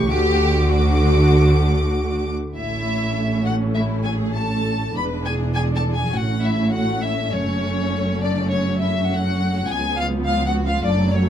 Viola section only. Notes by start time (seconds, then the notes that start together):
0.09 A3 F#4
0.71 A3 F#4
2.55 A3 C#4
4.94 G#3 D4
6.13 A3 C#4
9.68 F3 B3
10.85 F#3 A3